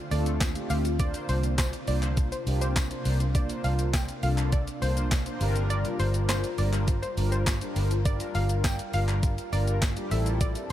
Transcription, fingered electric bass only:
0.11 0.54 D2 medium
0.70 1.13 D2 loud
1.29 1.72 C2 medium
1.88 2.31 C2 loud
2.47 2.89 C2 medium
3.06 3.48 C2 loud
3.64 4.07 C2 medium
4.23 4.66 C2 medium
4.82 5.25 C2 medium
5.41 5.84 G1 loud
6.00 6.42 G1 medium
6.58 7.01 G1 medium
7.17 7.60 G1 medium
7.76 8.19 G1 loud
8.35 8.78 G1 medium
8.94 9.37 G1 loud
9.53 9.95 G1 medium
10.11 10.54 A1 loud

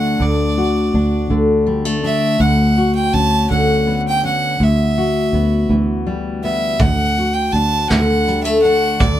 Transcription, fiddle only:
0.00 0.23 F#5 medium
0.21 1.31 D5 medium
2.04 2.42 E5 medium
2.40 2.94 F#5 medium
2.95 3.14 G5 medium
3.13 3.49 A5 medium
3.50 4.01 F#5 medium
4.08 4.23 G5 medium
4.25 4.64 F#5 medium
4.63 5.72 E5 medium
6.44 6.82 E5 medium
6.81 7.35 F#5 medium
7.34 7.53 G5 medium
7.52 7.90 A5 medium
7.89 8.43 F#5 medium
8.44 8.61 E5 medium
8.62 9.01 F#5 medium
8.99 9.20 D5 medium

